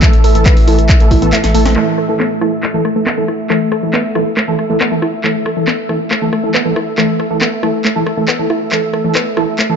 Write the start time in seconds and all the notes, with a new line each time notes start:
Already playing: A2 E3 A3 A4 E5 E6
0.02 E3 A3 A4, kick, clap, closed hi-hat
0.13 A1, closed hi-hat
0.24 A1 A4, open hi-hat
0.35 A1 E3 A3 A4, closed hi-hat
0.46 B3, kick, clap, closed hi-hat
0.57 A1, open hi-hat
0.67 A1 E3 A3 E4 A4, open hi-hat
0.79 A1, closed hi-hat
0.89 A3, kick, clap, closed hi-hat
1.00 A1 E3 A3 A4, closed hi-hat
1.11 A1 E4, kick, open hi-hat
1.22 A1 E3 A3 B3 A4, closed hi-hat
1.33 A3, clap, closed hi-hat
1.44 A1, snare, closed hi-hat
1.54 A1 E3 A3 A4, open hi-hat
1.65 A1 C4, snare, closed hi-hat
1.76 E3 A3 A4, cross-stick, clap
1.98 A4, cross-stick
2.09 E3 A3 A4
2.20 B3, cross-stick, clap
2.41 E3 A3 E4 A4, cross-stick
2.63 A3, cross-stick, clap
2.74 E3 A3 A4
2.85 A3, cross-stick
2.96 E3 A3 A4
3.06 B3, cross-stick, clap
3.18 E3 A3 A4
3.28 E4, cross-stick
3.50 E3 A3 A4, cross-stick, clap
3.72 A4, cross-stick
3.83 E3 A3 A4
3.93 B3, cross-stick, clap
4.15 E3 A3 E4 A4, cross-stick
4.37 A3, cross-stick, clap
4.48 E3 A3 A4
4.59 A3, cross-stick
4.70 E3 A3 A4
4.81 B3, cross-stick, clap
4.92 E3 A3 A4
5.02 E4, cross-stick
5.24 E3 A3 A4, cross-stick, clap
5.46 A4, cross-stick
5.57 E3 A3 A4
5.67 B3, cross-stick, clap
5.89 E3 A3 E4 A4, cross-stick
6.11 A3, cross-stick, clap
6.22 E3 A3 A4
6.33 A3, cross-stick
6.44 E3 A3 A4
6.54 B3, cross-stick, clap
6.65 E3 A3 A4
6.76 E4, cross-stick
6.98 E3 A3 A4, cross-stick, clap
7.20 A4, cross-stick
7.31 E3 A3 A4
7.41 B3, cross-stick, clap
7.63 E3 A3 E4 A4, cross-stick
7.85 A3, cross-stick, clap
7.96 E3 A3 A4
8.06 A3, cross-stick
8.17 E3 A3 A4
8.28 B3, cross-stick, clap
8.39 E3 A3 A4
8.50 E4, cross-stick
8.72 E3 A3 A4, cross-stick, clap
8.93 A4, cross-stick
9.04 E3 A3 A4
9.15 B3, cross-stick, clap
9.37 E3 A3 E4 A4, cross-stick
9.59 A3, cross-stick, clap
9.70 E3 A3 A4